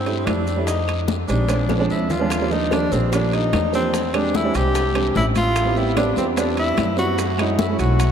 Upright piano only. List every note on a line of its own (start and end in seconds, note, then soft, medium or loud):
0.06 0.42 G3 medium
0.06 0.42 A3 medium
0.06 0.42 D4 medium
0.06 0.42 E4 medium
0.56 0.67 G3 medium
0.56 0.67 A3 medium
0.56 0.68 D4 medium
0.56 0.68 E4 medium
1.28 1.43 G3 medium
1.28 1.43 G#3 medium
1.28 1.43 C4 medium
1.28 1.43 D#4 medium
1.48 1.63 F3 medium
1.48 1.63 G#3 medium
1.48 1.64 C4 medium
1.48 1.64 D4 medium
1.69 1.76 F3 medium
1.69 1.77 G#3 medium
1.69 1.77 C4 medium
1.69 1.77 D4 medium
1.78 2.08 F3 medium
1.78 2.08 G#3 medium
1.78 2.08 C4 medium
1.78 2.09 D4 loud
2.19 2.30 F3 medium
2.19 2.30 G#3 medium
2.19 2.31 C4 medium
2.19 2.31 D4 medium
2.40 2.48 F3 medium
2.40 2.48 G3 medium
2.40 2.48 A#3 medium
2.40 2.49 D4 medium
2.51 2.65 F3 medium
2.51 2.65 G3 medium
2.51 2.66 A#3 medium
2.51 2.66 D4 medium
2.71 2.85 F3 medium
2.71 2.86 G3 medium
2.71 2.86 A#3 medium
2.71 2.86 D4 medium
2.91 3.06 F3 medium
2.91 3.06 G3 medium
2.91 3.07 A#3 medium
2.91 3.07 D4 medium
3.12 3.55 F3 medium
3.12 3.55 G3 medium
3.12 3.55 A#3 medium
3.12 3.56 D4 medium
3.73 3.93 F3 medium
3.73 3.94 G3 medium
3.73 3.94 A#3 medium
3.73 3.94 D4 medium
4.13 4.35 G3 medium
4.13 4.35 G#3 medium
4.13 4.35 C4 medium
4.13 4.36 D4 medium
4.43 4.79 G3 medium
4.43 4.80 G#3 medium
4.43 4.80 C4 medium
4.43 4.80 D4 medium
4.94 5.44 G3 medium
4.94 5.45 G#3 medium
4.94 5.45 C4 medium
4.94 5.45 D4 medium
5.65 5.73 G3 medium
5.65 5.73 B3 medium
5.65 5.73 C4 medium
5.65 5.74 E4 medium
5.76 5.90 G3 medium
5.76 5.91 B3 medium
5.76 5.91 C4 medium
5.76 5.91 G4 medium
5.95 6.10 G3 medium
5.95 6.11 B3 medium
5.95 6.11 C4 medium
5.95 6.12 D4 medium
6.17 6.31 G3 medium
6.17 6.31 B3 medium
6.17 6.32 C4 medium
6.17 6.32 G4 medium
6.36 6.79 G3 medium
6.36 6.80 B3 medium
6.36 6.80 C4 medium
6.36 6.80 D4 medium
6.96 7.18 G3 medium
6.96 7.18 B3 medium
6.96 7.18 C4 medium
6.96 7.19 E4 medium
7.37 7.60 G#3 medium
7.37 7.60 A3 medium
7.37 7.60 C#4 medium
7.37 7.60 E4 medium
7.68 7.99 G#3 medium
7.68 7.99 A3 medium
7.68 8.00 C#4 medium
7.68 8.00 E4 medium